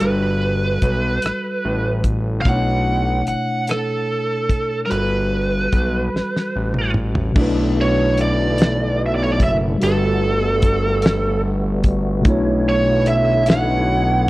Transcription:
0.00 0.79 G1 loud
0.00 2.39 G3 soft
0.00 2.41 F#4 soft
0.00 2.42 A4 soft
0.00 2.01 B4 medium
0.00 closed hi-hat medium
0.05 2.44 B4 medium
0.82 1.19 B1 medium
0.82 kick medium
0.82 closed hi-hat medium
1.22 1.32 A1 soft
1.22 cross-stick medium
1.22 closed hi-hat medium
1.65 2.42 A1 medium
2.04 kick medium
2.04 closed hi-hat medium
2.41 4.84 B2 medium
2.41 4.85 A3 soft
2.41 2.47 F5 medium
2.45 3.23 B1 loud
2.45 2.52 C#4 soft
2.45 4.88 E4 soft
2.45 3.25 F#5 loud
2.45 kick loud
2.45 closed hi-hat medium
2.50 4.90 D4 soft
2.50 4.89 C#5 medium
3.27 3.36 G1 soft
3.27 3.70 F#5 medium
3.27 closed hi-hat medium
3.67 4.80 A4 medium
3.67 cross-stick loud
3.67 closed hi-hat medium
4.49 kick medium
4.49 closed hi-hat medium
4.86 7.30 G3 medium
4.86 4.91 A#4 medium
4.90 5.69 G1 loud
4.90 7.31 F#4 soft
4.90 7.32 A4 soft
4.90 6.91 B4 medium
4.90 closed hi-hat medium
4.96 5.00 A#4 medium
5.02 7.37 B4 medium
5.72 6.09 B1 medium
5.72 kick medium
5.72 closed hi-hat medium
6.14 6.22 A1 soft
6.14 snare soft
6.36 snare medium
6.56 7.32 A1 medium
6.74 mid tom medium
6.94 mid tom medium
7.15 floor tom medium
7.33 9.42 B1 loud
7.33 9.75 B2 medium
7.33 9.78 D3 medium
7.33 9.76 A3 medium
7.33 14.30 A3 medium
7.33 9.78 D4 medium
7.33 9.78 E4 medium
7.33 kick loud
7.33 crash loud
7.37 9.77 D4 medium
7.37 9.78 E4 medium
7.42 9.79 B4 medium
7.81 8.17 C#5 medium
8.18 9.01 D5 medium
8.18 closed hi-hat medium
8.58 snare loud
8.58 closed hi-hat medium
9.06 9.14 E5 medium
9.15 9.23 D5 medium
9.24 9.32 C#5 medium
9.33 9.41 D5 medium
9.40 9.77 F#1 medium
9.40 9.54 E5 loud
9.40 kick medium
9.40 closed hi-hat medium
9.78 12.20 G3 medium
9.78 12.21 F#4 medium
9.78 closed hi-hat medium
9.83 12.27 G1 loud
9.83 12.24 G3 medium
9.83 12.24 B3 medium
9.83 12.24 F#4 medium
9.83 12.23 A4 medium
9.83 11.41 A4 medium
9.83 12.24 B4 medium
10.62 kick medium
10.62 closed hi-hat medium
11.02 snare loud
11.02 closed hi-hat medium
11.84 kick medium
11.84 closed hi-hat medium
12.21 14.30 B2 medium
12.21 14.30 A3 medium
12.25 14.30 B1 loud
12.25 14.30 D3 medium
12.25 14.30 D4 medium
12.25 14.30 E4 medium
12.25 14.30 C#5 medium
12.25 kick loud
12.25 closed hi-hat medium
12.30 14.30 C#5 medium
12.69 13.08 C#5 medium
13.06 13.46 E5 medium
13.06 closed hi-hat medium
13.46 14.30 F#5 medium
13.46 snare loud
13.46 closed hi-hat medium

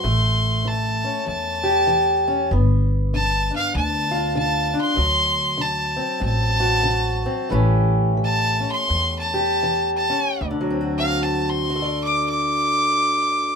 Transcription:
0.00 1.03 A1 medium
0.00 0.61 A2 medium
0.00 0.69 C6 medium
0.04 2.48 A3 medium
0.65 1.23 E3 medium
0.65 1.27 A5 medium
1.04 2.26 C#4 medium
1.25 1.84 E2 medium
1.25 2.53 E2 medium
1.25 2.48 A5 loud
1.63 2.47 G4 medium
1.87 2.45 E3 medium
2.28 2.49 C#4 medium
2.51 3.49 G1 medium
2.51 3.08 G2 medium
2.51 4.96 B3 medium
3.14 3.70 D3 medium
3.14 3.54 A5 loud
3.51 4.72 D4 medium
3.56 3.75 F5 loud
3.74 4.73 D2 medium
3.74 4.31 D3 medium
3.74 4.35 A5 medium
4.11 4.95 F4 medium
4.35 4.93 D3 medium
4.35 4.77 A5 medium
4.74 4.95 D4 medium
4.81 5.63 C6 loud
4.96 5.54 D2 medium
4.96 5.97 D2 medium
4.96 7.51 F#3 medium
5.58 6.16 D3 medium
5.58 6.21 A5 medium
5.97 7.25 C4 medium
6.20 7.25 A1 loud
6.20 6.80 A2 medium
6.25 7.50 A5 loud
6.60 7.48 F#4 medium
6.83 7.45 D3 medium
7.26 7.49 C4 medium
7.49 8.62 A1 loud
7.49 8.13 A2 medium
7.49 8.16 E3 medium
7.49 10.37 A3 medium
7.49 8.59 C#4 medium
7.49 9.33 G4 medium
8.17 8.83 E3 medium
8.24 8.67 A5 loud
8.60 10.08 C#4 medium
8.71 9.15 C6 loud
8.89 9.57 E2 medium
8.89 10.11 E2 medium
9.19 9.89 A5 loud
9.34 10.37 G4 medium
9.63 10.35 E3 medium
9.96 10.43 A5 medium
10.10 10.37 C#4 medium
10.41 13.55 D2 medium
10.51 13.55 D3 medium
10.61 11.69 F#3 medium
10.70 11.75 C4 medium
10.81 11.70 F#4 medium
10.98 11.24 F5 loud
11.23 11.51 A5 medium
11.49 12.00 C6 medium
11.70 13.55 F#4 medium
11.76 13.55 A4 medium
11.82 13.55 D5 medium
12.04 12.28 D6 medium
12.29 13.55 D6 loud

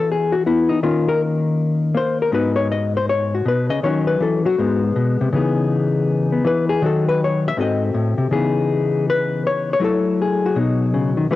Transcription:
0.00 0.81 E3 medium
0.00 0.46 B3 medium
0.00 0.31 F#4 medium
0.11 0.34 G#4 medium
0.32 0.45 F#4 medium
0.46 0.83 B3 medium
0.46 0.70 E4 medium
0.69 0.82 D#4 medium
0.83 2.31 D#3 medium
0.83 1.93 A#3 medium
0.83 2.31 C#4 medium
0.83 1.07 F4 medium
1.08 1.21 A#4 loud
1.95 2.30 A#3 medium
1.95 2.21 C5 medium
2.22 2.33 A#4 medium
2.32 3.44 G#2 medium
2.32 3.80 B3 medium
2.32 3.81 D#4 medium
2.32 3.32 F#4 medium
2.32 2.55 B4 medium
2.56 2.69 C#5 medium
2.72 2.95 D#5 medium
2.97 3.08 C5 medium
3.09 3.33 C#5 medium
3.35 3.46 F#4 medium
3.45 3.69 B2 medium
3.45 3.70 B4 medium
3.70 3.82 C#3 medium
3.70 3.82 D#5 loud
3.83 4.20 D#3 medium
3.83 4.44 F#3 medium
3.83 4.57 C#4 medium
3.83 4.21 F#4 medium
3.83 4.07 C#5 medium
4.07 4.20 B4 medium
4.20 4.44 E3 medium
4.20 4.45 A4 medium
4.46 4.57 F#3 medium
4.46 4.82 F#4 medium
4.59 4.95 G#2 medium
4.59 5.31 G#3 soft
4.59 5.33 B3 medium
4.96 5.20 B2 medium
5.21 5.32 C3 medium
5.33 6.44 C#3 medium
5.33 6.43 E3 medium
5.33 6.31 B3 medium
5.33 6.85 D#4 medium
5.33 6.46 G#4 medium
6.32 6.82 B3 soft
6.45 6.80 E3 medium
6.45 6.69 B4 medium
6.69 6.81 G#4 medium
6.82 7.54 D#3 medium
6.82 7.56 F#3 medium
6.82 7.55 F#4 medium
6.82 7.08 A4 medium
7.08 7.20 B4 medium
7.24 7.46 C#5 medium
7.48 7.58 E5 loud
7.57 7.94 G#2 medium
7.57 8.30 C4 medium
7.57 8.30 F#4 medium
7.57 8.31 A4 medium
7.57 7.83 D#5 loud
7.94 8.17 A2 medium
8.18 8.30 C3 medium
8.31 9.79 C#3 medium
8.31 9.79 E3 soft
8.31 9.81 B3 soft
8.31 9.82 D#4 soft
8.31 9.06 G#4 medium
9.10 9.45 B4 medium
9.47 9.69 C#5 medium
9.73 9.83 C#5 medium
9.80 10.56 F#3 medium
9.80 10.54 A3 soft
9.80 10.54 E4 soft
9.84 10.44 A4 medium
10.22 10.57 G#4 medium
10.46 11.32 F#4 medium
10.56 11.29 B2 medium
10.56 11.30 F#3 soft
10.56 11.31 D#4 soft
10.94 11.17 C#3 medium
11.17 11.30 D#3 medium
11.31 11.36 E3 medium
11.31 11.36 G#3 soft
11.31 11.36 D#4 medium

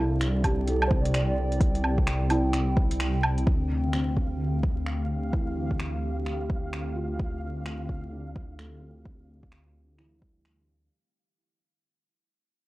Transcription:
0.00 3.45 C2 medium
0.00 3.46 C3 medium
0.00 10.91 C4 medium
0.00 0.43 D4 medium
0.00 0.44 E4 medium
0.00 0.53 A4 medium
0.00 4.23 D5 medium
0.00 10.91 G5 medium
0.21 finger snap loud
0.21 closed hi-hat medium
0.44 0.91 G4 medium
0.44 kick medium
0.44 closed hi-hat medium
0.44 low woodblock soft
0.68 1.14 A4 medium
0.68 closed hi-hat medium
0.82 low woodblock medium
0.87 1.30 C5 medium
0.87 kick loud
1.01 1.43 D5 medium
1.05 closed hi-hat medium
1.14 finger snap loud
1.14 closed hi-hat medium
1.52 closed hi-hat soft
1.60 kick loud
1.60 closed hi-hat medium
1.75 closed hi-hat soft
1.84 low woodblock soft
1.98 kick medium
2.07 finger snap loud
2.07 closed hi-hat medium
2.30 2.77 E4 medium
2.30 closed hi-hat medium
2.30 low woodblock soft
2.53 finger snap medium
2.53 closed hi-hat medium
2.77 kick loud
2.91 closed hi-hat medium
3.00 finger snap loud
3.00 closed hi-hat medium
3.23 low woodblock medium
3.38 closed hi-hat soft
3.47 10.89 D2 medium
3.47 10.91 D3 medium
3.47 10.93 F5 medium
3.47 kick loud
3.64 10.91 A3 medium
3.88 10.91 G4 medium
3.93 4.40 C4 medium
3.93 finger snap loud
4.09 10.91 F5 medium
4.17 kick medium
4.63 kick loud
4.86 finger snap loud
5.33 5.80 E3 medium
5.33 kick loud
5.71 kick medium
5.80 finger snap loud
6.26 finger snap medium
6.50 kick loud
6.73 finger snap loud
6.96 7.42 F4 medium
7.19 kick loud
7.66 finger snap loud
7.89 kick medium
8.12 8.58 D4 soft
8.36 kick loud
8.58 9.05 A3 medium
8.58 finger snap loud
8.79 9.22 C4 soft
9.05 kick loud
9.43 kick medium
9.52 finger snap loud
9.98 10.45 E3 medium
9.98 finger snap medium
10.18 10.61 G3 soft
10.18 kick medium
10.45 finger snap medium

